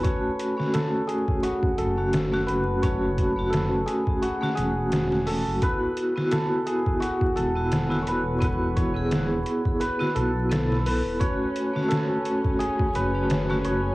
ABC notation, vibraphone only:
X:1
M:4/4
L:1/16
Q:"Swing 16ths" 1/4=86
K:F#m
V:1 name="Vibraphone"
[A,CF]3 [A,CF]8 [A,CF]2 [A,CF]3 | [A,CF]3 [A,CF]6 [A,CF]6- [A,CF] | [B,EF]3 [B,EF]8 [B,EF]2 [B,EF]3 | [B,EF]3 [B,EG]6 [B,EF]3 [B,EA]4 |
[A,CF]3 [A,CF]8 [A,CF]2 [A,CF]3 |]